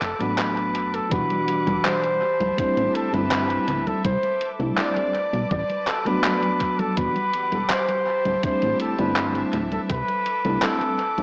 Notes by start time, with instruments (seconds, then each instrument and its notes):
Already playing: string section B4 A5 D6
0.02 analog synth bass F#1, flugelhorn A4, clap, closed hi-hat
0.19 analog synth bass A1, fm electric piano F#3 A3 B3 D4 F#4, flugelhorn B4, closed hi-hat
0.39 clap, closed hi-hat
0.57 closed hi-hat
0.75 analog synth bass F#1, closed hi-hat
0.94 flugelhorn A4, closed hi-hat
1.10 analog synth bass E1, fm electric piano B2 E3 G3 D4 F#4, string section G3 F#5 D6, flugelhorn B4, kick, closed hi-hat, high conga
1.31 closed hi-hat, high conga
1.48 closed hi-hat
1.67 analog synth bass E1, closed hi-hat, high conga
1.85 flugelhorn C5, clap, closed hi-hat, high conga
2.04 closed hi-hat, high conga
2.21 string section G4 E5 A5
2.40 analog synth bass D1, closed hi-hat, high conga
2.57 analog synth bass A1, fm electric piano G3 A3 C4 D4 E4, flugelhorn C5, kick, closed hi-hat, high conga
2.77 analog synth bass A1, closed hi-hat, high conga
2.94 flugelhorn A4, closed hi-hat
3.12 analog synth bass G1, fm electric piano G3 A3 C4 D4 E4, flugelhorn B4, closed hi-hat, high conga
3.31 clap, closed hi-hat, high conga
3.50 closed hi-hat, high conga
3.68 analog synth bass D1, closed hi-hat
3.87 flugelhorn A4, closed hi-hat, high conga
4.04 analog synth bass C2, string section A4 D6, flugelhorn C5, kick, closed hi-hat, high conga
4.23 closed hi-hat, high conga
4.41 closed hi-hat
4.59 analog synth bass C2, fm electric piano G3 A3 C4 D4 E4, closed hi-hat, high conga
4.77 flugelhorn D5, clap, closed hi-hat, high conga
4.96 closed hi-hat, high conga
5.14 string section B4 A5, closed hi-hat
5.33 analog synth bass B1, closed hi-hat, high conga
5.51 analog synth bass A1, flugelhorn D5, kick, closed hi-hat, high conga
5.70 closed hi-hat, high conga
5.87 flugelhorn A4, clap, closed hi-hat
6.05 fm electric piano F#3 A3 B3 D4 F#4, flugelhorn B4, closed hi-hat, high conga
6.24 clap, closed hi-hat, high conga
6.43 closed hi-hat, high conga
6.60 kick, closed hi-hat
6.79 flugelhorn A4, closed hi-hat, high conga
6.96 analog synth bass E1, fm electric piano E3 G3 B3 D4 F#4, string section G4 F#5, flugelhorn B4, kick, closed hi-hat, high conga
7.16 closed hi-hat, high conga
7.34 closed hi-hat
7.52 analog synth bass E1, closed hi-hat, high conga
7.70 flugelhorn C5, clap, closed hi-hat, high conga
7.89 closed hi-hat, high conga
8.07 string section E5 A5
8.25 analog synth bass D1, closed hi-hat, high conga
8.43 analog synth bass A1, fm electric piano G3 A3 C4 D4 E4, flugelhorn C5, kick, closed hi-hat, high conga
8.62 analog synth bass A1, closed hi-hat, high conga
8.80 flugelhorn A4, closed hi-hat
8.98 analog synth bass G1, fm electric piano G3 A3 C4 D4 E4, flugelhorn B4, closed hi-hat, high conga
9.16 clap, closed hi-hat, high conga
9.35 closed hi-hat, high conga
9.53 analog synth bass D1, closed hi-hat
9.72 flugelhorn A4, closed hi-hat, high conga
9.89 analog synth bass C2, string section A4 D6, flugelhorn B4, kick, closed hi-hat, high conga
10.08 closed hi-hat, high conga
10.26 closed hi-hat
10.45 analog synth bass C2, fm electric piano G3 A3 C4 D4 E4, closed hi-hat, high conga
10.62 flugelhorn A4, clap, closed hi-hat, high conga
10.81 closed hi-hat, high conga
10.99 string section B4 A5, closed hi-hat
11.18 analog synth bass B1, closed hi-hat, high conga